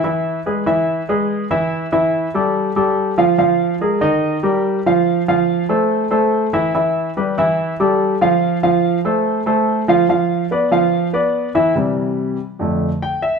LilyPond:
\new Staff \with { instrumentName = "Grand piano" } { \time 4/4 \key f \lydian \tempo 4 = 143 <e e' e''>4 <gis gis' b'>8 <e e' e''>4 <gis gis' b'>4 <e e' e''>8~ | <e e' e''>8 <e e' e''>4 <g g' a'>4 <g g' a'>4 <f f' f''>8 | <f f' f''>4 <aes aes' bes'>8 <ees ees' ees''>4 <g g' bes'>4 <f f' f''>8~ | <f f' f''>8 <f f' f''>4 <a a' c''>4 <a a' c''>4 <e e' e''>8 |
<e e' e''>4 <g g' b'>8 <e e' e''>4 <g g' a'>4 <f f' f''>8~ | <f f' f''>8 <f f' f''>4 <a a' c''>4 <a a' c''>4 <f f' f''>8 | <f f' f''>4 <b b' d''>8 <f f' f''>4 <b b' d''>4 <e e' e''>8 | <c e g>4. r8 <f, d a>8 r8 g''8 e''8 | }